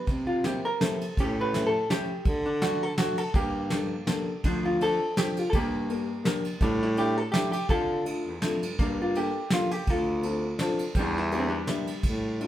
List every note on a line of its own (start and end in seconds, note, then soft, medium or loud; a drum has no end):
0.07 0.62 C3 medium
0.07 kick medium
0.07 ride soft
0.27 0.45 F4 medium
0.44 0.65 A#3 medium
0.44 0.65 C4 medium
0.44 0.65 E4 soft
0.44 0.66 G4 medium
0.44 snare medium
0.44 ride soft
0.65 0.81 A#4 loud
0.80 1.01 A#3 medium
0.80 1.01 C4 medium
0.80 1.01 E4 medium
0.80 1.02 G4 medium
0.80 1.19 A4 medium
0.80 snare medium
0.80 ride soft
1.01 ride soft
1.17 1.87 A2 loud
1.17 1.71 C#4 medium
1.17 1.44 G4 medium
1.17 kick medium
1.17 ride medium
1.41 1.66 B4 medium
1.53 1.73 A3 medium
1.53 1.73 C#4 medium
1.53 1.73 E4 medium
1.53 1.74 G4 medium
1.53 snare medium
1.53 ride soft
1.67 1.89 A4 medium
1.89 2.09 A3 medium
1.89 2.09 C#4 medium
1.89 2.10 E4 medium
1.89 2.10 G4 medium
1.89 2.24 G4 medium
1.89 snare medium
1.89 ride soft
2.25 2.96 D3 loud
2.25 kick medium
2.25 ride soft
2.46 2.62 D4 medium
2.62 2.82 A3 medium
2.62 2.82 D4 medium
2.62 2.83 F#4 medium
2.62 2.82 F#4 medium
2.62 2.82 A4 medium
2.62 snare medium
2.62 ride soft
2.83 2.98 A4 medium
2.96 3.17 A3 medium
2.96 3.18 D4 medium
2.96 3.18 F#4 medium
2.96 3.18 A4 medium
2.96 snare medium
2.96 ride soft
3.17 3.35 A4 medium
3.17 ride soft
3.34 4.06 G2 loud
3.34 4.24 A#3 medium
3.34 4.24 G4 medium
3.34 kick medium
3.34 ride soft
3.69 3.90 A#3 medium
3.69 3.90 D4 soft
3.69 3.90 G4 medium
3.69 3.91 A4 medium
3.69 snare medium
3.69 ride soft
4.06 4.27 A#3 medium
4.06 4.28 D4 medium
4.06 4.28 G4 medium
4.06 4.28 A4 medium
4.06 snare medium
4.06 ride soft
4.44 4.98 D2 medium
4.44 4.98 F3 medium
4.44 4.65 D4 medium
4.44 kick medium
4.44 ride soft
4.65 4.82 F4 medium
4.79 5.00 C4 medium
4.79 5.00 D4 soft
4.79 5.01 F4 medium
4.79 5.01 A4 medium
4.79 5.19 A4 loud
4.79 ride medium
5.16 5.36 C4 medium
5.16 5.37 D4 medium
5.16 5.37 F4 medium
5.16 5.39 G4 medium
5.16 5.37 A4 medium
5.16 snare medium
5.16 ride soft
5.37 5.48 F4 loud
5.37 ride soft
5.50 6.23 G2 medium
5.50 5.55 A4 medium
5.50 kick medium
5.50 ride medium
5.55 6.23 A#3 medium
5.55 6.22 G4 medium
5.89 6.09 A#3 medium
5.89 6.09 D4 medium
5.89 6.09 G4 medium
5.89 6.10 A#4 medium
5.89 ride soft
6.24 6.44 A#3 medium
6.24 6.45 D4 medium
6.24 6.45 G4 medium
6.24 6.45 A#4 medium
6.24 snare medium
6.24 ride soft
6.44 ride medium
6.60 7.31 A2 loud
6.60 7.13 G3 medium
6.60 6.83 D4 loud
6.60 kick medium
6.60 ride soft
6.83 6.98 E4 medium
6.96 7.16 A3 medium
6.96 7.17 D4 medium
6.96 7.17 E4 medium
6.96 7.17 G4 medium
6.96 7.18 G4 loud
6.96 ride soft
7.18 7.31 A4 loud
7.32 7.52 A3 medium
7.32 7.52 D4 medium
7.32 7.53 E4 medium
7.32 7.51 G4 medium
7.32 7.53 G4 medium
7.32 snare medium
7.32 ride soft
7.52 7.69 G4 loud
7.52 ride medium
7.68 8.05 D3 loud
7.68 8.22 F4 medium
7.68 8.03 A4 loud
7.68 kick medium
7.68 ride soft
8.04 8.25 A3 soft
8.04 8.25 D4 medium
8.04 8.25 F4 medium
8.04 8.26 A4 medium
8.04 ride medium
8.25 8.40 E2 medium
8.41 8.60 F2 medium
8.41 8.62 A3 medium
8.41 8.62 D4 medium
8.41 8.62 F4 medium
8.41 8.63 A4 medium
8.41 snare medium
8.41 ride medium
8.62 8.77 G2 medium
8.62 ride medium
8.79 9.33 G2 loud
8.79 9.31 A#3 medium
8.79 9.01 D4 medium
8.79 kick medium
8.79 ride soft
9.02 9.17 F4 medium
9.15 9.35 A#3 medium
9.15 9.35 D4 medium
9.15 9.35 G4 soft
9.15 9.53 G4 medium
9.15 9.36 A4 medium
9.15 ride soft
9.50 9.71 A#3 medium
9.50 9.71 D4 medium
9.50 9.71 F4 loud
9.50 9.72 G4 medium
9.50 9.72 A4 medium
9.50 snare medium
9.50 ride soft
9.71 9.90 G4 loud
9.71 ride soft
9.87 10.57 D2 loud
9.87 10.57 F4 medium
9.87 10.61 A4 loud
9.87 kick medium
9.87 ride soft
10.23 10.43 C4 medium
10.23 10.43 D4 medium
10.23 10.43 F4 medium
10.23 10.44 A4 medium
10.23 ride soft
10.59 10.79 C4 medium
10.59 10.79 D4 medium
10.59 10.80 F4 medium
10.59 10.80 A4 medium
10.59 snare medium
10.59 ride medium
10.79 ride soft
10.94 11.65 E2 loud
10.94 11.47 G3 medium
10.94 kick medium
10.94 ride medium
10.99 11.18 D4 loud
11.18 11.33 E4 loud
11.30 11.51 A#3 medium
11.30 11.51 D4 medium
11.30 11.40 D4 medium
11.30 11.51 E4 medium
11.30 11.52 G4 medium
11.30 ride soft
11.39 11.47 C4 medium
11.48 12.47 G3 medium
11.48 12.47 D4 medium
11.67 11.87 A#3 medium
11.67 11.88 D4 medium
11.67 11.88 E4 medium
11.67 11.88 G4 medium
11.67 snare medium
11.67 ride medium
11.87 ride medium
12.03 12.47 A2 loud
12.03 kick medium
12.03 ride medium
12.39 12.47 A3 medium
12.39 12.47 D4 medium
12.39 12.47 F4 medium
12.39 12.47 A4 medium
12.39 ride soft